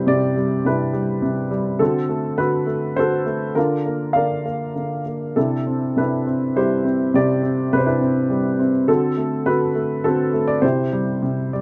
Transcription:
Already playing: C3 G3 D4 E4 G4 A4 B4 C5
0.07 C3 G4 D5
0.36 G3
0.65 C3 D4 E4 B4
0.93 G3
1.22 C3
1.51 G3
1.79 D3 C4 F#4 A4
2.09 A3
2.38 D3 F#4 B4
2.67 A3
2.96 D3 F#4 A4 C5
3.26 A3
3.55 D3 D4 F4 A#4
3.86 A#3
4.13 D3 A#4 D5 F5
4.46 A#3
4.76 D3
5.06 A#3
5.36 C3 D4 E4 A4
5.67 C4
5.97 C3 D4 E4 B4
6.26 C4
6.56 G3 E4 G4 C5
6.85 C4
7.14 C3 G4 D5
7.43 C4
7.73 C3 B4
7.77 C5
7.86 D4 E4 B4
8.01 C4
8.30 G3
8.59 C4
8.88 D3 C4 F#4 A4
9.17 A3
9.46 D3 F#4 B4
9.75 A3
10.04 D3 C4 F#4 A4
10.34 A3
10.48 D5
10.62 C3 E4 G4 C5
10.92 G3
11.22 C3
11.53 G3 D5

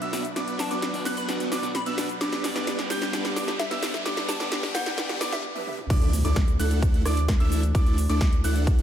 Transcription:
Already playing: B2 F#3 D4 B4 F#5, riser
0.02 B3 D4 F#4 B4 E5 E6, closed hi-hat, shaker
0.13 B3 D4 F#4 D5, snare, open hi-hat, shaker
0.25 closed hi-hat, shaker
0.36 B3 D4 F#4 B4 D5 D6, snare, closed hi-hat, shaker
0.48 closed hi-hat, shaker
0.59 B3 D4 F#4 D5 A5, snare, open hi-hat, shaker
0.71 B3 D4 F#4 B4 D5 D6, closed hi-hat, shaker
0.82 snare, closed hi-hat, shaker
0.93 B3 D4 F#4 D5, open hi-hat, shaker
1.05 B3 D4 F#4 B4 F#5 F#6, snare, open hi-hat, shaker
1.17 B5, closed hi-hat, shaker
1.28 B3 D4 F#4 D5, snare, closed hi-hat, shaker
1.40 closed hi-hat, shaker
1.52 B3 D4 F#4 B4 D5 D6, snare, open hi-hat, shaker
1.63 B3 D4 F#4 D5, closed hi-hat, shaker
1.75 B5, snare, closed hi-hat, shaker
1.86 B3 D4 F#4 B4 E5 E6, closed hi-hat, shaker
1.97 B3 D4 F#4 D5, snare, open hi-hat, shaker
2.09 closed hi-hat, shaker
2.21 G2 G3 B3 D4 G4 B4 D5 D6, snare, closed hi-hat, shaker
2.33 snare, closed hi-hat, shaker
2.43 B3 D4 G4 D5, snare, open hi-hat, shaker
2.55 B3 D4 G4 B4 D5 D6, snare, closed hi-hat, shaker
2.67 snare, closed hi-hat, shaker
2.78 B3 D4 G4 D5, snare, closed hi-hat, shaker
2.90 B3 D4 G4 B4 G5 G6, snare, open hi-hat, shaker
3.02 snare, closed hi-hat, shaker
3.13 B3 D4 G4 D5, snare, closed hi-hat, shaker
3.25 snare, closed hi-hat, shaker
3.36 B3 D4 G4 B4 D5 D6, snare, open hi-hat, shaker
3.47 B3 D4 G4 D5, snare, closed hi-hat, shaker
3.59 E5, snare, closed hi-hat, shaker
3.71 B3 D4 G4 B4 E5 E6, snare, closed hi-hat, shaker
3.82 B3 D4 G4 D5, snare, open hi-hat, shaker
3.94 snare, closed hi-hat, shaker
4.05 B3 D4 G4 B4 D5 D6, snare, closed hi-hat, shaker
4.17 snare, closed hi-hat, shaker
4.28 B3 D4 G4 D5 A5, snare, open hi-hat, shaker
4.40 B3 D4 G4 B4 D5 D6, snare, closed hi-hat, shaker
4.52 snare, closed hi-hat, shaker
4.63 B3 D4 G4 D5, snare, open hi-hat, shaker
4.75 B3 D4 G4 B4 F#5 G5 G6, snare, open hi-hat, shaker
4.86 snare, closed hi-hat, shaker
4.97 B3 D4 G4 D5, snare, closed hi-hat, shaker
5.09 snare, closed hi-hat, shaker
5.20 B3 D4 G4 B4 D5 D6, snare, open hi-hat, shaker
5.32 E5, snare, closed hi-hat, shaker
5.55 B3 D4 G4 B4 E5, high tom
5.67 mid tom
5.79 mid tom
5.90 D2 E3 A3 D4 E4 A4 D5 D6, kick, closed hi-hat, crash, impact, shaker
6.02 closed hi-hat, shaker
6.13 open hi-hat, shaker
6.25 D2 A3 D4 E4 A4 D5 D6, closed hi-hat, shaker
6.36 kick, snare, closed hi-hat, shaker
6.48 closed hi-hat, shaker
6.59 D2 A3 D4 E4 A4 F#5 F#6, open hi-hat, shaker
6.71 closed hi-hat, shaker
6.82 kick, closed hi-hat, shaker
6.94 closed hi-hat, shaker
7.05 D2 A3 D4 E4 A4 D5 D6, cross-stick, open hi-hat, shaker
7.17 closed hi-hat, shaker
7.28 kick, cross-stick, snare, closed hi-hat, shaker
7.40 D2 A3 D4 E4 A4 E5 E6, closed hi-hat, shaker
7.52 open hi-hat, shaker
7.63 closed hi-hat, shaker
7.75 D2 A3 D4 E4 A4 D5 D6, kick, closed hi-hat, shaker
7.87 closed hi-hat, shaker
7.98 open hi-hat, shaker
8.09 D2 A3 D4 E4 A4 D5 D6, closed hi-hat, shaker
8.21 kick, snare, closed hi-hat, shaker
8.33 closed hi-hat, shaker
8.44 D2 A3 D4 E4 A4 F#5 F#6, open hi-hat, shaker
8.56 closed hi-hat, shaker
8.67 kick, closed hi-hat, shaker
8.79 closed hi-hat

